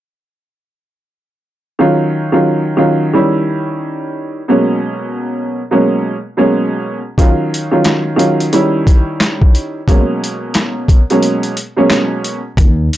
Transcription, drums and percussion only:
7.18 kick loud
7.18 closed hi-hat loud
7.54 closed hi-hat medium
7.84 snare loud
7.84 clap medium
7.84 closed hi-hat medium
8.19 closed hi-hat medium
8.40 closed hi-hat medium
8.53 closed hi-hat medium
8.87 kick medium
8.87 closed hi-hat medium
9.20 snare loud
9.20 clap medium
9.20 closed hi-hat medium
9.42 kick loud
9.55 closed hi-hat medium
9.88 kick loud
9.88 closed hi-hat loud
10.24 closed hi-hat medium
10.54 snare loud
10.54 clap medium
10.54 closed hi-hat medium
10.88 kick medium
10.88 closed hi-hat medium
11.10 closed hi-hat medium
11.23 closed hi-hat medium
11.43 closed hi-hat soft
11.57 closed hi-hat medium
11.90 snare loud
11.90 clap medium
11.90 closed hi-hat medium
12.24 closed hi-hat medium
12.57 kick loud
12.57 closed hi-hat loud
12.93 closed hi-hat medium

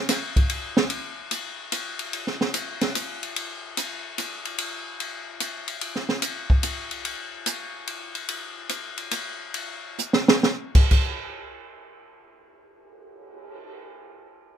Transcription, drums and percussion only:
0.09 snare soft
0.09 hi-hat pedal medium
0.09 ride medium
0.36 kick medium
0.36 ride soft
0.49 ride medium
0.77 snare medium
0.90 ride medium
1.31 hi-hat pedal medium
1.31 ride medium
1.72 hi-hat pedal soft
1.72 ride medium
1.99 ride soft
2.13 ride medium
2.27 snare soft
2.41 snare soft
2.54 hi-hat pedal soft
2.54 ride medium
2.81 snare soft
2.81 ride soft
2.95 hi-hat pedal medium
2.95 ride medium
3.23 ride soft
3.36 ride medium
3.77 hi-hat pedal medium
3.77 ride medium
4.18 hi-hat pedal medium
4.18 ride medium
4.45 ride soft
4.58 ride medium
5.00 ride medium
5.40 hi-hat pedal medium
5.40 ride medium
5.68 ride soft
5.81 ride medium
5.96 snare soft
6.09 snare soft
6.22 hi-hat pedal soft
6.22 ride medium
6.50 kick medium
6.63 hi-hat pedal medium
6.63 ride medium
6.91 ride soft
7.05 ride medium
7.46 hi-hat pedal medium
7.46 ride medium
7.87 ride medium
8.15 ride soft
8.29 ride medium
8.69 hi-hat pedal soft
8.69 ride medium
8.98 ride soft
9.11 hi-hat pedal medium
9.11 ride medium
9.54 ride medium
9.98 hi-hat pedal medium
10.13 snare medium
10.28 snare medium
10.43 snare medium
10.75 kick medium
10.75 crash medium
10.91 kick medium
10.91 crash medium
11.23 cymbal swell soft

